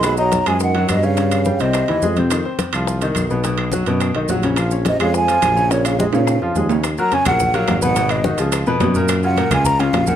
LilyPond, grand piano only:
\new Staff \with { instrumentName = "Grand piano" } { \time 4/4 \key bes \minor \tempo 4 = 212 <fis fis'>8 <dis' dis''>4 <gis gis'>4 <fis fis'>4 <cis cis'>8 | <des des'>4 <g g'>8 <c c'>4 <e e'>8 <gis gis'>8 <c c'>8 | <ees ees'>8 <c' c''>4 <f f'>4 <ees ees'>4 <ces ces'>8 | <b, b>4 <fis fis'>8 <b, b>4 <dis dis'>8 <fis fis'>8 <cis cis'>8 |
<f f'>8 <des' des''>4 <aes aes'>4 <f f'>4 <des des'>8 | <des des'>4 <aes aes'>8 <des des'>4 <f f'>8 <aes aes'>8 <des des'>8 | \key ees \minor r8 <ges ges' bes'>8 <des des' des''>8 <ges ges' bes'>4 <ges ges' bes'>4 <ces ces' ces''>8 | <ces ces' ces''>4 <ees ees' ges'>8 <f f' aes'>4 <ces ces' ces''>8 <ces ces' ces''>8 <bes, bes bes'>8~ |
<bes, bes bes'>8 <des des' f'>8 <bes, bes bes'>8 <des des' f'>4 <des des' f'>4 <bes, bes bes'>8 | }